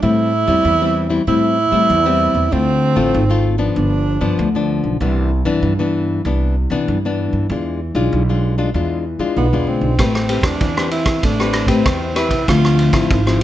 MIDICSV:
0, 0, Header, 1, 5, 480
1, 0, Start_track
1, 0, Key_signature, 0, "minor"
1, 0, Tempo, 622407
1, 22, Time_signature, 4, 2, 24, 8
1, 10360, End_track
2, 0, Start_track
2, 0, Title_t, "Tenor saxophone"
2, 0, Program_c, 0, 66
2, 20, Note_on_c, 0, 64, 120
2, 951, Note_off_c, 0, 64, 0
2, 987, Note_on_c, 0, 64, 108
2, 1951, Note_on_c, 0, 60, 101
2, 1963, Note_off_c, 0, 64, 0
2, 2699, Note_off_c, 0, 60, 0
2, 2901, Note_on_c, 0, 62, 77
2, 3591, Note_off_c, 0, 62, 0
2, 7228, Note_on_c, 0, 59, 79
2, 7462, Note_on_c, 0, 60, 84
2, 7473, Note_off_c, 0, 59, 0
2, 8056, Note_on_c, 0, 62, 91
2, 8067, Note_off_c, 0, 60, 0
2, 8416, Note_off_c, 0, 62, 0
2, 8420, Note_on_c, 0, 64, 82
2, 8668, Note_on_c, 0, 62, 92
2, 8680, Note_off_c, 0, 64, 0
2, 9006, Note_on_c, 0, 60, 90
2, 9017, Note_off_c, 0, 62, 0
2, 9382, Note_on_c, 0, 64, 87
2, 9394, Note_off_c, 0, 60, 0
2, 9624, Note_off_c, 0, 64, 0
2, 9631, Note_on_c, 0, 65, 106
2, 10077, Note_off_c, 0, 65, 0
2, 10113, Note_on_c, 0, 65, 85
2, 10357, Note_off_c, 0, 65, 0
2, 10360, End_track
3, 0, Start_track
3, 0, Title_t, "Nylon-string guitar"
3, 0, Program_c, 1, 24
3, 18, Note_on_c, 1, 45, 52
3, 21, Note_on_c, 1, 55, 49
3, 23, Note_on_c, 1, 60, 54
3, 26, Note_on_c, 1, 64, 55
3, 246, Note_off_c, 1, 55, 0
3, 247, Note_off_c, 1, 60, 0
3, 249, Note_off_c, 1, 64, 0
3, 366, Note_on_c, 1, 55, 61
3, 372, Note_on_c, 1, 60, 56
3, 377, Note_on_c, 1, 64, 70
3, 477, Note_off_c, 1, 45, 0
3, 506, Note_on_c, 1, 52, 52
3, 576, Note_off_c, 1, 55, 0
3, 579, Note_off_c, 1, 60, 0
3, 580, Note_off_c, 1, 64, 0
3, 627, Note_on_c, 1, 55, 55
3, 632, Note_on_c, 1, 60, 55
3, 635, Note_on_c, 1, 64, 70
3, 826, Note_off_c, 1, 55, 0
3, 829, Note_off_c, 1, 60, 0
3, 830, Note_off_c, 1, 64, 0
3, 845, Note_on_c, 1, 55, 59
3, 848, Note_on_c, 1, 60, 65
3, 852, Note_on_c, 1, 64, 74
3, 935, Note_off_c, 1, 55, 0
3, 937, Note_off_c, 1, 60, 0
3, 938, Note_off_c, 1, 64, 0
3, 960, Note_off_c, 1, 52, 0
3, 983, Note_on_c, 1, 45, 55
3, 986, Note_on_c, 1, 55, 49
3, 986, Note_on_c, 1, 60, 55
3, 989, Note_on_c, 1, 64, 54
3, 1209, Note_off_c, 1, 55, 0
3, 1210, Note_off_c, 1, 60, 0
3, 1210, Note_off_c, 1, 64, 0
3, 1324, Note_on_c, 1, 55, 60
3, 1328, Note_on_c, 1, 60, 60
3, 1331, Note_on_c, 1, 64, 69
3, 1439, Note_off_c, 1, 45, 0
3, 1461, Note_on_c, 1, 52, 53
3, 1535, Note_off_c, 1, 55, 0
3, 1537, Note_off_c, 1, 60, 0
3, 1538, Note_off_c, 1, 64, 0
3, 1586, Note_on_c, 1, 55, 62
3, 1589, Note_on_c, 1, 60, 72
3, 1592, Note_on_c, 1, 64, 72
3, 1906, Note_off_c, 1, 55, 0
3, 1906, Note_off_c, 1, 60, 0
3, 1909, Note_off_c, 1, 64, 0
3, 1918, Note_off_c, 1, 52, 0
3, 1939, Note_on_c, 1, 50, 48
3, 1945, Note_on_c, 1, 57, 48
3, 1947, Note_on_c, 1, 60, 52
3, 1953, Note_on_c, 1, 65, 56
3, 2264, Note_off_c, 1, 57, 0
3, 2266, Note_off_c, 1, 60, 0
3, 2268, Note_off_c, 1, 65, 0
3, 2282, Note_on_c, 1, 57, 63
3, 2287, Note_on_c, 1, 60, 64
3, 2289, Note_on_c, 1, 65, 75
3, 2398, Note_off_c, 1, 50, 0
3, 2494, Note_off_c, 1, 57, 0
3, 2497, Note_off_c, 1, 60, 0
3, 2497, Note_off_c, 1, 65, 0
3, 2542, Note_on_c, 1, 57, 60
3, 2547, Note_on_c, 1, 60, 58
3, 2550, Note_on_c, 1, 65, 72
3, 2744, Note_off_c, 1, 57, 0
3, 2745, Note_off_c, 1, 60, 0
3, 2748, Note_off_c, 1, 65, 0
3, 2762, Note_on_c, 1, 53, 65
3, 2765, Note_on_c, 1, 59, 65
3, 2770, Note_on_c, 1, 62, 73
3, 2899, Note_on_c, 1, 43, 53
3, 3214, Note_off_c, 1, 53, 0
3, 3214, Note_off_c, 1, 59, 0
3, 3217, Note_off_c, 1, 62, 0
3, 3245, Note_on_c, 1, 53, 70
3, 3248, Note_on_c, 1, 59, 66
3, 3250, Note_on_c, 1, 62, 67
3, 3356, Note_off_c, 1, 43, 0
3, 3375, Note_on_c, 1, 50, 54
3, 3456, Note_off_c, 1, 53, 0
3, 3456, Note_off_c, 1, 59, 0
3, 3458, Note_off_c, 1, 62, 0
3, 3510, Note_on_c, 1, 53, 63
3, 3513, Note_on_c, 1, 59, 52
3, 3518, Note_on_c, 1, 62, 65
3, 3827, Note_off_c, 1, 53, 0
3, 3830, Note_off_c, 1, 59, 0
3, 3831, Note_off_c, 1, 62, 0
3, 3835, Note_off_c, 1, 50, 0
3, 3866, Note_on_c, 1, 48, 53
3, 3868, Note_on_c, 1, 52, 57
3, 3870, Note_on_c, 1, 59, 52
3, 3872, Note_on_c, 1, 62, 61
3, 4089, Note_off_c, 1, 52, 0
3, 4091, Note_off_c, 1, 59, 0
3, 4092, Note_off_c, 1, 62, 0
3, 4206, Note_on_c, 1, 52, 66
3, 4209, Note_on_c, 1, 59, 61
3, 4214, Note_on_c, 1, 62, 78
3, 4321, Note_off_c, 1, 48, 0
3, 4346, Note_on_c, 1, 43, 52
3, 4416, Note_off_c, 1, 52, 0
3, 4418, Note_off_c, 1, 59, 0
3, 4419, Note_off_c, 1, 62, 0
3, 4467, Note_on_c, 1, 52, 65
3, 4472, Note_on_c, 1, 59, 66
3, 4478, Note_on_c, 1, 62, 62
3, 4786, Note_off_c, 1, 52, 0
3, 4789, Note_off_c, 1, 59, 0
3, 4791, Note_off_c, 1, 62, 0
3, 4800, Note_off_c, 1, 43, 0
3, 4824, Note_on_c, 1, 48, 47
3, 4827, Note_on_c, 1, 52, 54
3, 4831, Note_on_c, 1, 62, 55
3, 4834, Note_on_c, 1, 59, 59
3, 5049, Note_off_c, 1, 52, 0
3, 5051, Note_off_c, 1, 59, 0
3, 5052, Note_off_c, 1, 62, 0
3, 5174, Note_on_c, 1, 52, 58
3, 5180, Note_on_c, 1, 62, 69
3, 5181, Note_on_c, 1, 59, 69
3, 5280, Note_off_c, 1, 48, 0
3, 5310, Note_on_c, 1, 43, 54
3, 5381, Note_off_c, 1, 52, 0
3, 5382, Note_off_c, 1, 59, 0
3, 5383, Note_off_c, 1, 62, 0
3, 5439, Note_on_c, 1, 52, 60
3, 5442, Note_on_c, 1, 59, 56
3, 5445, Note_on_c, 1, 62, 70
3, 5752, Note_off_c, 1, 52, 0
3, 5753, Note_off_c, 1, 59, 0
3, 5755, Note_off_c, 1, 62, 0
3, 5762, Note_off_c, 1, 43, 0
3, 5789, Note_on_c, 1, 52, 51
3, 5793, Note_on_c, 1, 56, 46
3, 5796, Note_on_c, 1, 62, 53
3, 5797, Note_on_c, 1, 65, 56
3, 6013, Note_off_c, 1, 56, 0
3, 6014, Note_off_c, 1, 62, 0
3, 6015, Note_off_c, 1, 65, 0
3, 6132, Note_on_c, 1, 56, 64
3, 6136, Note_on_c, 1, 62, 61
3, 6138, Note_on_c, 1, 65, 69
3, 6242, Note_off_c, 1, 52, 0
3, 6269, Note_on_c, 1, 47, 53
3, 6339, Note_off_c, 1, 56, 0
3, 6341, Note_off_c, 1, 62, 0
3, 6342, Note_off_c, 1, 65, 0
3, 6396, Note_on_c, 1, 56, 59
3, 6400, Note_on_c, 1, 62, 61
3, 6402, Note_on_c, 1, 65, 57
3, 6591, Note_off_c, 1, 56, 0
3, 6592, Note_off_c, 1, 62, 0
3, 6594, Note_off_c, 1, 65, 0
3, 6616, Note_on_c, 1, 56, 60
3, 6620, Note_on_c, 1, 62, 67
3, 6623, Note_on_c, 1, 65, 69
3, 6701, Note_off_c, 1, 56, 0
3, 6703, Note_off_c, 1, 62, 0
3, 6705, Note_off_c, 1, 65, 0
3, 6722, Note_off_c, 1, 47, 0
3, 6745, Note_on_c, 1, 52, 51
3, 6750, Note_on_c, 1, 56, 47
3, 6751, Note_on_c, 1, 62, 47
3, 6755, Note_on_c, 1, 65, 63
3, 6971, Note_off_c, 1, 56, 0
3, 6972, Note_off_c, 1, 62, 0
3, 6974, Note_off_c, 1, 65, 0
3, 7091, Note_on_c, 1, 56, 65
3, 7097, Note_on_c, 1, 62, 56
3, 7098, Note_on_c, 1, 65, 64
3, 7201, Note_off_c, 1, 52, 0
3, 7227, Note_on_c, 1, 47, 50
3, 7300, Note_off_c, 1, 56, 0
3, 7300, Note_off_c, 1, 62, 0
3, 7302, Note_off_c, 1, 65, 0
3, 7350, Note_on_c, 1, 56, 52
3, 7355, Note_on_c, 1, 62, 63
3, 7358, Note_on_c, 1, 65, 68
3, 7668, Note_off_c, 1, 56, 0
3, 7671, Note_off_c, 1, 62, 0
3, 7671, Note_off_c, 1, 65, 0
3, 7681, Note_off_c, 1, 47, 0
3, 7704, Note_on_c, 1, 57, 51
3, 7705, Note_on_c, 1, 60, 43
3, 7709, Note_on_c, 1, 67, 54
3, 7712, Note_on_c, 1, 71, 58
3, 7845, Note_off_c, 1, 60, 0
3, 7846, Note_off_c, 1, 67, 0
3, 7849, Note_off_c, 1, 71, 0
3, 7936, Note_on_c, 1, 60, 61
3, 7939, Note_on_c, 1, 67, 65
3, 7940, Note_on_c, 1, 71, 62
3, 8160, Note_off_c, 1, 57, 0
3, 8184, Note_on_c, 1, 52, 54
3, 8262, Note_off_c, 1, 60, 0
3, 8263, Note_off_c, 1, 67, 0
3, 8264, Note_off_c, 1, 71, 0
3, 8304, Note_on_c, 1, 60, 57
3, 8309, Note_on_c, 1, 67, 55
3, 8313, Note_on_c, 1, 71, 59
3, 8640, Note_off_c, 1, 52, 0
3, 8662, Note_on_c, 1, 57, 48
3, 8746, Note_off_c, 1, 60, 0
3, 8748, Note_off_c, 1, 67, 0
3, 8750, Note_off_c, 1, 71, 0
3, 8788, Note_on_c, 1, 60, 62
3, 8791, Note_on_c, 1, 67, 60
3, 8793, Note_on_c, 1, 71, 66
3, 8988, Note_off_c, 1, 60, 0
3, 8990, Note_off_c, 1, 67, 0
3, 8990, Note_off_c, 1, 71, 0
3, 9009, Note_on_c, 1, 60, 66
3, 9012, Note_on_c, 1, 67, 60
3, 9018, Note_on_c, 1, 71, 73
3, 9119, Note_off_c, 1, 57, 0
3, 9146, Note_on_c, 1, 52, 54
3, 9339, Note_off_c, 1, 60, 0
3, 9339, Note_off_c, 1, 67, 0
3, 9343, Note_off_c, 1, 71, 0
3, 9373, Note_on_c, 1, 60, 58
3, 9377, Note_on_c, 1, 67, 57
3, 9380, Note_on_c, 1, 71, 66
3, 9581, Note_off_c, 1, 60, 0
3, 9583, Note_off_c, 1, 67, 0
3, 9584, Note_off_c, 1, 71, 0
3, 9602, Note_off_c, 1, 52, 0
3, 9624, Note_on_c, 1, 50, 49
3, 9626, Note_on_c, 1, 53, 49
3, 9628, Note_on_c, 1, 60, 48
3, 9946, Note_off_c, 1, 53, 0
3, 9948, Note_off_c, 1, 60, 0
3, 9969, Note_on_c, 1, 53, 61
3, 9973, Note_on_c, 1, 60, 68
3, 9976, Note_on_c, 1, 64, 69
3, 10081, Note_off_c, 1, 50, 0
3, 10179, Note_off_c, 1, 53, 0
3, 10181, Note_off_c, 1, 60, 0
3, 10182, Note_off_c, 1, 64, 0
3, 10232, Note_on_c, 1, 53, 52
3, 10236, Note_on_c, 1, 60, 59
3, 10240, Note_on_c, 1, 64, 69
3, 10360, Note_off_c, 1, 53, 0
3, 10360, Note_off_c, 1, 60, 0
3, 10360, Note_off_c, 1, 64, 0
3, 10360, End_track
4, 0, Start_track
4, 0, Title_t, "Upright bass"
4, 0, Program_c, 2, 32
4, 19, Note_on_c, 2, 45, 100
4, 327, Note_off_c, 2, 45, 0
4, 366, Note_on_c, 2, 40, 89
4, 475, Note_off_c, 2, 40, 0
4, 499, Note_on_c, 2, 40, 105
4, 909, Note_off_c, 2, 40, 0
4, 981, Note_on_c, 2, 45, 92
4, 1288, Note_off_c, 2, 45, 0
4, 1327, Note_on_c, 2, 57, 77
4, 1436, Note_off_c, 2, 57, 0
4, 1463, Note_on_c, 2, 40, 97
4, 1769, Note_off_c, 2, 40, 0
4, 1809, Note_on_c, 2, 40, 86
4, 1917, Note_off_c, 2, 40, 0
4, 1944, Note_on_c, 2, 38, 98
4, 2249, Note_off_c, 2, 38, 0
4, 2285, Note_on_c, 2, 33, 87
4, 2394, Note_off_c, 2, 33, 0
4, 2424, Note_on_c, 2, 32, 102
4, 2831, Note_off_c, 2, 32, 0
4, 2901, Note_on_c, 2, 31, 103
4, 3207, Note_off_c, 2, 31, 0
4, 3248, Note_on_c, 2, 43, 83
4, 3356, Note_off_c, 2, 43, 0
4, 3384, Note_on_c, 2, 38, 98
4, 3689, Note_off_c, 2, 38, 0
4, 3729, Note_on_c, 2, 35, 74
4, 3837, Note_off_c, 2, 35, 0
4, 3859, Note_on_c, 2, 36, 100
4, 4166, Note_off_c, 2, 36, 0
4, 4207, Note_on_c, 2, 43, 86
4, 4315, Note_off_c, 2, 43, 0
4, 4338, Note_on_c, 2, 43, 98
4, 4748, Note_off_c, 2, 43, 0
4, 4819, Note_on_c, 2, 36, 101
4, 5126, Note_off_c, 2, 36, 0
4, 5166, Note_on_c, 2, 48, 85
4, 5275, Note_off_c, 2, 48, 0
4, 5307, Note_on_c, 2, 43, 95
4, 5611, Note_off_c, 2, 43, 0
4, 5651, Note_on_c, 2, 43, 83
4, 5758, Note_off_c, 2, 43, 0
4, 5780, Note_on_c, 2, 40, 107
4, 6087, Note_off_c, 2, 40, 0
4, 6128, Note_on_c, 2, 35, 91
4, 6236, Note_off_c, 2, 35, 0
4, 6267, Note_on_c, 2, 35, 94
4, 6673, Note_off_c, 2, 35, 0
4, 6742, Note_on_c, 2, 40, 102
4, 7049, Note_off_c, 2, 40, 0
4, 7089, Note_on_c, 2, 52, 78
4, 7197, Note_off_c, 2, 52, 0
4, 7222, Note_on_c, 2, 35, 90
4, 7325, Note_off_c, 2, 35, 0
4, 7349, Note_on_c, 2, 40, 82
4, 7451, Note_off_c, 2, 40, 0
4, 7456, Note_on_c, 2, 38, 68
4, 7563, Note_off_c, 2, 38, 0
4, 7568, Note_on_c, 2, 35, 83
4, 7683, Note_off_c, 2, 35, 0
4, 7701, Note_on_c, 2, 33, 101
4, 8008, Note_off_c, 2, 33, 0
4, 8032, Note_on_c, 2, 40, 86
4, 8147, Note_off_c, 2, 40, 0
4, 8183, Note_on_c, 2, 40, 94
4, 8591, Note_off_c, 2, 40, 0
4, 8662, Note_on_c, 2, 33, 95
4, 8969, Note_off_c, 2, 33, 0
4, 8992, Note_on_c, 2, 45, 85
4, 9108, Note_off_c, 2, 45, 0
4, 9143, Note_on_c, 2, 40, 89
4, 9450, Note_off_c, 2, 40, 0
4, 9477, Note_on_c, 2, 36, 80
4, 9591, Note_off_c, 2, 36, 0
4, 9626, Note_on_c, 2, 38, 107
4, 9932, Note_off_c, 2, 38, 0
4, 9956, Note_on_c, 2, 33, 86
4, 10070, Note_off_c, 2, 33, 0
4, 10108, Note_on_c, 2, 32, 101
4, 10360, Note_off_c, 2, 32, 0
4, 10360, End_track
5, 0, Start_track
5, 0, Title_t, "Drums"
5, 7702, Note_on_c, 9, 36, 66
5, 7703, Note_on_c, 9, 37, 62
5, 7703, Note_on_c, 9, 51, 50
5, 7779, Note_off_c, 9, 36, 0
5, 7780, Note_off_c, 9, 37, 0
5, 7780, Note_off_c, 9, 51, 0
5, 7828, Note_on_c, 9, 37, 62
5, 7905, Note_off_c, 9, 37, 0
5, 7935, Note_on_c, 9, 51, 49
5, 8012, Note_off_c, 9, 51, 0
5, 8046, Note_on_c, 9, 36, 71
5, 8046, Note_on_c, 9, 37, 68
5, 8046, Note_on_c, 9, 51, 54
5, 8123, Note_off_c, 9, 37, 0
5, 8123, Note_off_c, 9, 51, 0
5, 8124, Note_off_c, 9, 36, 0
5, 8179, Note_on_c, 9, 51, 48
5, 8182, Note_on_c, 9, 36, 75
5, 8256, Note_off_c, 9, 51, 0
5, 8259, Note_off_c, 9, 36, 0
5, 8308, Note_on_c, 9, 37, 73
5, 8385, Note_off_c, 9, 37, 0
5, 8416, Note_on_c, 9, 51, 47
5, 8493, Note_off_c, 9, 51, 0
5, 8526, Note_on_c, 9, 37, 68
5, 8526, Note_on_c, 9, 51, 47
5, 8527, Note_on_c, 9, 36, 71
5, 8603, Note_off_c, 9, 37, 0
5, 8603, Note_off_c, 9, 51, 0
5, 8605, Note_off_c, 9, 36, 0
5, 8663, Note_on_c, 9, 36, 71
5, 8663, Note_on_c, 9, 51, 51
5, 8740, Note_off_c, 9, 36, 0
5, 8740, Note_off_c, 9, 51, 0
5, 8789, Note_on_c, 9, 37, 58
5, 8867, Note_off_c, 9, 37, 0
5, 8894, Note_on_c, 9, 37, 69
5, 8894, Note_on_c, 9, 51, 48
5, 8971, Note_off_c, 9, 37, 0
5, 8971, Note_off_c, 9, 51, 0
5, 9009, Note_on_c, 9, 36, 64
5, 9009, Note_on_c, 9, 51, 47
5, 9086, Note_off_c, 9, 36, 0
5, 9086, Note_off_c, 9, 51, 0
5, 9143, Note_on_c, 9, 37, 73
5, 9143, Note_on_c, 9, 51, 52
5, 9144, Note_on_c, 9, 36, 91
5, 9220, Note_off_c, 9, 37, 0
5, 9220, Note_off_c, 9, 51, 0
5, 9221, Note_off_c, 9, 36, 0
5, 9377, Note_on_c, 9, 37, 63
5, 9377, Note_on_c, 9, 51, 47
5, 9454, Note_off_c, 9, 37, 0
5, 9454, Note_off_c, 9, 51, 0
5, 9491, Note_on_c, 9, 36, 62
5, 9492, Note_on_c, 9, 51, 45
5, 9568, Note_off_c, 9, 36, 0
5, 9570, Note_off_c, 9, 51, 0
5, 9626, Note_on_c, 9, 36, 72
5, 9628, Note_on_c, 9, 37, 65
5, 9628, Note_on_c, 9, 51, 47
5, 9703, Note_off_c, 9, 36, 0
5, 9705, Note_off_c, 9, 37, 0
5, 9705, Note_off_c, 9, 51, 0
5, 9752, Note_on_c, 9, 37, 64
5, 9829, Note_off_c, 9, 37, 0
5, 9861, Note_on_c, 9, 51, 45
5, 9938, Note_off_c, 9, 51, 0
5, 9972, Note_on_c, 9, 36, 72
5, 9974, Note_on_c, 9, 37, 69
5, 9974, Note_on_c, 9, 51, 46
5, 10049, Note_off_c, 9, 36, 0
5, 10052, Note_off_c, 9, 37, 0
5, 10052, Note_off_c, 9, 51, 0
5, 10107, Note_on_c, 9, 36, 85
5, 10109, Note_on_c, 9, 51, 42
5, 10184, Note_off_c, 9, 36, 0
5, 10186, Note_off_c, 9, 51, 0
5, 10233, Note_on_c, 9, 37, 63
5, 10310, Note_off_c, 9, 37, 0
5, 10360, End_track
0, 0, End_of_file